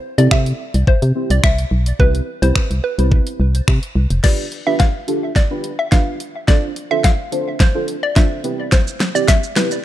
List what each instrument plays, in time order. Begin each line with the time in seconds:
Already playing: synth pluck C5
0.18 fm bass C3, synth stab C4 E4 G4 A4, synth pluck D5, closed hi-hat
0.31 fm bass C3, synth pluck E5, finger snap, kick
0.46 closed hi-hat
0.74 fm bass C2, closed hi-hat
0.87 fm bass C3, synth pluck C5, kick
1.02 fm bass C3, closed hi-hat
1.15 synth stab C4 E4 G4 C5
1.30 fm bass C2, synth pluck D5, closed hi-hat
1.44 fm bass C2, synth pluck E5, finger snap, kick
1.58 closed hi-hat
1.71 fm bass B1
1.86 closed hi-hat
1.99 fm bass C2, synth stab C4 E4 G4 B4, synth pluck B4, kick
2.15 closed hi-hat
2.42 fm bass C2, synth stab C4 E4 G4 B4, synth pluck C5, closed hi-hat
2.56 finger snap, kick
2.71 fm bass C2, closed hi-hat
2.84 synth pluck B4
2.98 fm bass C2, synth stab C4 E4 G4 B4, closed hi-hat
3.12 kick
3.27 closed hi-hat
3.40 fm bass C2
3.55 closed hi-hat
3.68 fm bass C3, finger snap, kick
3.83 closed hi-hat
3.96 fm bass C2
4.10 fm bass F1, closed hi-hat
4.23 synth stab D4 F4 G4 B4, synth pluck D5, kick, snare, closed hi-hat, crash
4.52 closed hi-hat
4.66 synth stab D4 F4 G4 B4, synth pluck E5
4.79 synth pluck F5, kick, snare, closed hi-hat
5.08 synth stab D4 F4 G4 A4, closed hi-hat
5.36 synth pluck D5, kick, snare, closed hi-hat
5.50 synth stab D4 F4 G4 B4
5.64 closed hi-hat
5.79 synth pluck E5
5.92 synth stab D4 F4 G4 B4, synth pluck F5, kick, snare, closed hi-hat
6.20 closed hi-hat
6.48 synth stab D4 F4 A4 C5, synth pluck D5, kick, snare, closed hi-hat
6.76 closed hi-hat
6.91 synth stab D4 F4 A4 C5, synth pluck E5
7.04 synth pluck F5, kick, snare, closed hi-hat
7.32 synth stab D4 F4 A4 C5, closed hi-hat
7.60 synth pluck C5, kick, snare, closed hi-hat
7.75 synth stab D4 F4 A4 C5
7.88 closed hi-hat
8.03 synth pluck D5
8.16 synth stab D4 F4 A4 C5, synth pluck E5, kick, snare, closed hi-hat
8.44 synth stab C4 E4 G4 B4, closed hi-hat
8.72 synth pluck C5, kick, snare, closed hi-hat, shaker
8.87 shaker
9.00 snare, closed hi-hat, shaker
9.15 synth stab C4 E4 G4 D5, synth pluck D5, shaker
9.28 synth pluck E5, kick, snare, closed hi-hat, shaker
9.43 shaker
9.56 synth stab C4 E4 G4 B4, snare, closed hi-hat, shaker
9.71 shaker